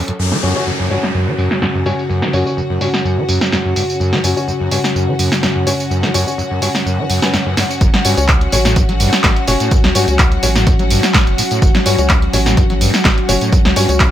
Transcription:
Already playing: F#3 C#4 F#4 A4
0.08 F#2, closed hi-hat
0.19 F#2 C#3 C#4 F#4, crash, downlifter
0.32 F#3, snare
0.43 F#2 C#4 F#4 C#5, open hi-hat, tambourine
0.56 C#4 F#4 C#5, tambourine
0.67 F#2
0.80 F#2
0.91 G2 C#4 F#4 C#5, open hi-hat, tambourine
1.03 snare, tambourine
1.15 F#2, tambourine
1.27 F#3
1.38 F#2, open hi-hat, tambourine
1.44 F#5
1.51 snare, tambourine
1.62 F#2, snare, tambourine
1.75 F#2
1.86 G2 C#4 F#4 C#5, open hi-hat, tambourine
1.99 tambourine
2.10 F#2, tambourine
2.22 F#3, snare
2.33 F#2 C#4 F#4 C#5, open hi-hat, tambourine
2.46 C#4 F#4 C#5, tambourine
2.57 F#2, tambourine
2.70 F#2
2.81 G2 C#4 F#4 C#5, open hi-hat, tambourine
2.94 snare, tambourine
3.05 F#2, tambourine
3.18 F#3
3.29 F#2, open hi-hat, tambourine
3.41 snare, tambourine
3.52 F#2, snare, tambourine
3.65 F#2
3.76 G2, open hi-hat, tambourine
3.90 tambourine
4.00 F#2, tambourine
4.13 F#3, snare
4.24 F#2 C#4 F#4 C#5, open hi-hat, tambourine
4.36 C#4 F#4 C#5, tambourine
4.48 F#2, tambourine
4.60 F#2
4.71 G2 C#4 F#4 C#5, open hi-hat, tambourine
4.84 snare, tambourine
4.95 F#2, tambourine
5.08 F#3
5.19 F#2, open hi-hat, tambourine
5.32 snare, tambourine
5.43 F#2, snare, tambourine
5.56 F#2
5.67 G2 C#4 F#4 C#5, open hi-hat, tambourine
5.80 tambourine
5.91 F#2, tambourine
6.03 F#3, snare
6.14 F#2 C#4 F#4 C#5, open hi-hat, tambourine
6.27 C#4 F#4 C#5, tambourine
6.38 F#2, tambourine
6.51 F#2
6.62 G2 C#4 F#4 C#5, open hi-hat, tambourine
6.75 snare, tambourine
6.86 F#2, tambourine
6.99 F#3
7.10 F#2, open hi-hat, tambourine
7.22 C#4 F#4 B4, snare, tambourine
7.33 F#2, snare, tambourine
7.46 F#2
7.57 G2, snare, open hi-hat, tambourine
7.71 tambourine
7.81 F#1 F#2 F#3 C#4 F#4, kick, closed hi-hat, tambourine
7.94 F#3, snare, closed hi-hat
8.05 G2 C#4 F#4 C#5, open hi-hat, tambourine
8.17 C#2 C#4 F#4 C#5, closed hi-hat, tambourine
8.28 A2, kick, clap, closed hi-hat, tambourine
8.41 closed hi-hat
8.52 A1 A2 C#4 F#4 C#5, open hi-hat, tambourine
8.65 A2, snare, closed hi-hat, tambourine
8.76 F#2, kick, closed hi-hat, tambourine
8.89 F#3, closed hi-hat
9.00 G2, open hi-hat, tambourine
9.13 snare, closed hi-hat, tambourine
9.24 A1 A2, kick, snare, clap, closed hi-hat, tambourine
9.36 closed hi-hat
9.47 F#1 A2 C#4 F#4 C#5, open hi-hat, tambourine
9.60 A2, closed hi-hat, tambourine
9.71 F#2, kick, closed hi-hat, tambourine
9.84 C#2 F#3, snare, closed hi-hat
9.95 G2 C#4 F#4 C#5, open hi-hat, tambourine
10.08 C#2 C#4 F#4 C#5, closed hi-hat, tambourine
10.19 A2, kick, clap, closed hi-hat, tambourine
10.32 closed hi-hat
10.43 A1 A2 C#4 F#4 C#5, open hi-hat, tambourine
10.56 A2, snare, closed hi-hat, tambourine
10.67 F#2, kick, closed hi-hat, tambourine
10.79 F#3, closed hi-hat
10.90 G2, open hi-hat, tambourine
11.03 snare, closed hi-hat, tambourine
11.14 A2, kick, snare, clap, closed hi-hat, tambourine
11.27 F#1, closed hi-hat
11.38 A2, open hi-hat, tambourine
11.51 A2, closed hi-hat, tambourine
11.62 F#1 F#2, kick, closed hi-hat, tambourine
11.75 F#3, snare, closed hi-hat
11.86 G2 C#4 F#4 C#5, open hi-hat, tambourine
11.98 C#2 C#4 F#4 C#5, closed hi-hat, tambourine
12.09 A2, kick, clap, closed hi-hat, tambourine
12.22 closed hi-hat
12.33 A1 A2 C#4 F#4 C#5, open hi-hat, tambourine
12.46 A2, snare, closed hi-hat, tambourine
12.57 F#2, kick, closed hi-hat, tambourine
12.70 F#3, closed hi-hat
12.81 G2, open hi-hat, tambourine
12.94 snare, closed hi-hat, tambourine
13.05 A1 A2, kick, snare, clap, closed hi-hat, tambourine
13.18 closed hi-hat
13.29 F#1 A2 C#4 F#4 C#5, open hi-hat, tambourine
13.41 A2, closed hi-hat, tambourine
13.52 F#2, kick, closed hi-hat, tambourine
13.65 C#2 F#3, snare, closed hi-hat
13.76 G2 C#4 F#4 C#5, open hi-hat, tambourine
13.89 C#2 C#4 F#4 C#5, closed hi-hat, tambourine
14.00 A2, kick, clap, closed hi-hat, tambourine

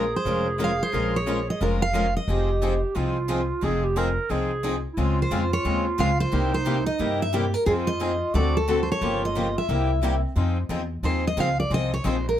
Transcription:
Already playing: A#1 G#4 A#4
0.16 C5
0.25 F1 F3 G#3 C#4 F4 A#4
0.58 F3 G#3 C#4 F4 A#4
0.64 F5
0.83 C5
0.92 A#1 F3 G#3 C#4 F4 A#4
1.16 C#5
1.26 F3 G#3 C#4 F4 A#4
1.50 D#5
1.60 F1 F3 G#3 C#4 F4 A#4
1.82 F5
1.93 F3 G#3 C#4 F4 A#4
2.17 D#5
2.28 F1 F3 C4 D#4 G4 G#4
2.61 F3 C4 D#4 G#4
2.95 C2 F3 C4 D#4 F4 G#4
3.29 F3 C4 D#4 G#4
3.63 F1 F3 C4 D#4 G#4
3.84 G4
3.96 F3 C4 D#4 G#4 A#4
4.29 C2 F3 C4 D#4 G#4
4.63 F3 C4 D#4 G#4
4.93 C#3 E4
4.97 C#2 G#3 C4 F4 G#4
5.22 C5
5.31 F2 C#3 G#3 C4 F4 G#4
5.53 C#5
5.65 D#2 C#3 G#3 C4 F4 G#4
5.99 C#2 C#3 G#3 C4 F4 G#4 F5
6.20 C5
6.32 C2 C3 G3 A#3 D#4 E4 G4
6.54 C5
6.66 C3 G3 A#3 E4 G4
6.86 D#5
6.99 G2 C3 G3 A#3 E4 G4
7.22 E5
7.34 C3 G3 A#3 E4 G4
7.54 A#4
7.66 F2 F3 C4 D#4 F4 G#4
7.87 D#5
8.01 F3 C4 D#4 G#4
8.34 D2 D3 A3 C4 F#4 A4 D5
8.57 A4
8.68 D3 A3 C4 F#4 A4
8.83 C5
8.92 C#5
9.01 G1 C#3 F3 A#3 F4 G4
9.25 D#5
9.36 C#3 F3 A#3 F4 G4
9.58 E5
9.68 C2 C3 G3 A#3 E4 G4
10.02 C3 G3 A#3 C4 E4 G4
10.36 F2 F3 C4 D#4 G#4
10.69 E2 F3 C4 D#4 G#4
11.03 D#2 F3 C4 D#4 G#4 C5
11.27 D#5
11.37 C#2 F3 C4 D#4 G#4 F5
11.60 D5
11.70 C2 F3 C4 D#4 G#4
11.74 D#5
11.94 C#5
12.04 A#1 F3 C4 D#4 G#4 C5
12.29 A#4

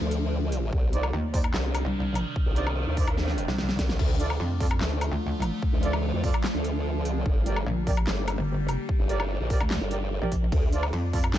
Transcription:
Already playing: D3 F3 A3 F4
0.01 D2
0.11 closed hi-hat
0.52 closed hi-hat
0.73 C2 C3 D#3 G3 D4, kick
0.93 D#4 C5 D5, closed hi-hat
1.03 low woodblock
1.13 D#2
1.34 D#4 C5 D5, kick, open hi-hat
1.44 closed hi-hat, low woodblock
1.54 C2, snare, clap
1.75 closed hi-hat, low woodblock
1.85 C2
2.15 closed hi-hat, low woodblock
2.36 kick
2.46 C2
2.56 D#4 C5 D5, closed hi-hat
2.67 low woodblock
2.87 D#2
2.97 D#4 C5 D5, kick, open hi-hat
3.07 D#2, closed hi-hat, low woodblock
3.18 snare
3.28 snare
3.38 closed hi-hat
3.48 C2, snare
3.58 snare
3.69 snare
3.79 C2, kick, snare, closed hi-hat
3.89 snare
3.99 D2 D3 F3 A3 F4, kick, crash
4.20 F4 A4 D5, closed hi-hat
4.30 low woodblock
4.40 F2
4.60 F4 A4 D5, kick, open hi-hat
4.71 closed hi-hat, low woodblock
4.81 D2, snare, clap
5.01 closed hi-hat, low woodblock
5.12 D2
5.42 closed hi-hat, low woodblock
5.62 kick
5.73 D2
5.83 F4 A4 D5, closed hi-hat
5.93 low woodblock
6.14 F2
6.24 F4 A4 D5, kick, open hi-hat
6.34 closed hi-hat, low woodblock
6.44 snare, clap
6.54 D2
6.64 closed hi-hat
7.03 C#2, closed hi-hat
7.26 G1 G3 A#3 G4, kick
7.46 G4 A#4 D5, closed hi-hat
7.56 low woodblock
7.67 A#1
7.87 G4 A#4 D5, kick, open hi-hat
7.97 closed hi-hat, low woodblock
8.07 G1, snare, clap
8.28 closed hi-hat, low woodblock
8.38 G1
8.69 closed hi-hat, low woodblock
8.89 kick
8.99 G1
9.09 G4 A#4 D5, closed hi-hat
9.20 low woodblock
9.40 A#1
9.50 G4 A#4 D5, kick, open hi-hat
9.60 D2, closed hi-hat, low woodblock
9.71 snare, clap
9.81 G1
9.91 G4 A#4 D5, closed hi-hat
10.22 A#1 G4 A#4 D5
10.32 kick, closed hi-hat
10.52 D2 D3 F3 A3 F4, kick, ride
10.73 F4 A4 D5, closed hi-hat
10.83 low woodblock
10.93 F2, ride
11.13 F4 A4 D5, kick, open hi-hat
11.24 closed hi-hat, low woodblock
11.34 D2, snare, clap, ride

